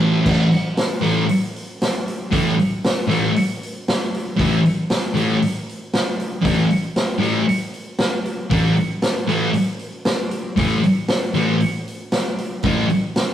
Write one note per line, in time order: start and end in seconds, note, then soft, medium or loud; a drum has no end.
0.00 0.23 A2 medium
0.00 0.23 E3 loud
0.00 0.23 A3 loud
0.00 crash medium
0.24 0.46 A2 medium
0.24 0.46 E3 medium
0.24 0.46 A3 loud
0.24 kick loud
0.24 crash loud
0.52 open hi-hat medium
0.77 snare loud
0.77 open hi-hat medium
1.01 1.23 A2 medium
1.01 1.23 E3 medium
1.01 1.23 A3 loud
1.01 open hi-hat medium
1.29 open hi-hat medium
1.56 open hi-hat medium
1.82 snare loud
1.82 open hi-hat medium
2.08 open hi-hat medium
2.31 2.52 A2 loud
2.31 2.53 E3 loud
2.31 2.53 A3 loud
2.31 kick loud
2.31 open hi-hat medium
2.59 open hi-hat medium
2.84 snare loud
2.84 open hi-hat medium
3.07 3.29 A2 medium
3.07 3.29 E3 loud
3.07 3.30 A3 loud
3.07 open hi-hat medium
3.36 open hi-hat medium
3.63 open hi-hat medium
3.88 snare loud
3.88 open hi-hat medium
4.14 open hi-hat medium
4.37 4.58 A2 loud
4.37 4.59 E3 medium
4.37 4.59 A3 loud
4.37 kick loud
4.37 open hi-hat medium
4.65 open hi-hat medium
4.90 snare loud
4.90 open hi-hat medium
5.14 5.36 A2 medium
5.14 5.36 E3 medium
5.14 5.36 A3 loud
5.14 open hi-hat medium
5.42 open hi-hat medium
5.69 open hi-hat soft
5.93 snare loud
5.93 open hi-hat medium
6.20 open hi-hat medium
6.42 6.64 A2 medium
6.42 6.64 E3 medium
6.42 6.65 A3 loud
6.42 kick loud
6.42 open hi-hat medium
6.70 open hi-hat medium
6.96 snare loud
6.96 open hi-hat medium
7.18 7.41 A2 medium
7.18 7.41 E3 medium
7.18 7.42 A3 medium
7.23 open hi-hat medium
7.49 open hi-hat medium
7.74 open hi-hat soft
7.98 snare loud
7.98 open hi-hat medium
8.25 open hi-hat soft
8.50 8.72 A2 loud
8.50 8.71 E3 loud
8.50 8.72 A3 loud
8.50 kick loud
8.50 open hi-hat medium
8.77 open hi-hat soft
9.02 snare loud
9.02 open hi-hat medium
9.27 9.49 A2 medium
9.27 9.49 E3 medium
9.27 9.50 A3 loud
9.27 open hi-hat soft
9.54 open hi-hat medium
9.79 open hi-hat soft
10.05 snare loud
10.05 open hi-hat medium
10.31 open hi-hat medium
10.56 10.77 A2 loud
10.56 10.78 E3 medium
10.56 10.79 A3 loud
10.56 kick loud
10.56 open hi-hat medium
10.83 open hi-hat medium
11.08 snare loud
11.08 open hi-hat medium
11.34 11.55 A2 medium
11.34 11.55 E3 medium
11.34 11.56 A3 loud
11.34 open hi-hat soft
11.60 open hi-hat medium
11.88 open hi-hat medium
12.12 snare loud
12.12 open hi-hat medium
12.38 open hi-hat medium
12.63 12.85 A2 medium
12.63 12.85 E3 medium
12.63 12.85 A3 loud
12.63 kick loud
12.63 open hi-hat medium
12.90 open hi-hat medium
13.16 snare loud
13.16 open hi-hat medium